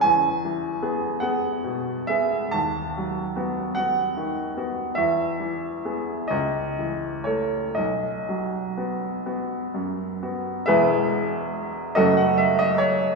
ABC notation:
X:1
M:6/8
L:1/16
Q:3/8=46
K:E
V:1 name="Upright piano"
g6 f4 e2 | a6 f6 | e6 d4 c2 | d6 z6 |
[GBe]6 [FAd] f e d c2 |]
V:2 name="Upright piano"
E,,2 E,2 [B,G]2 [B,G]2 B,,2 [B,G]2 | D,,2 F,2 [B,F]2 [B,F]2 D,2 [B,F]2 | E,,2 E,2 [B,G]2 C,,2 E,2 [A,A]2 | B,,,2 F,2 [B,F]2 [B,F]2 F,,2 [B,F]2 |
[E,,,E,,G,B,E]6 [F,,,F,,F,A,]6 |]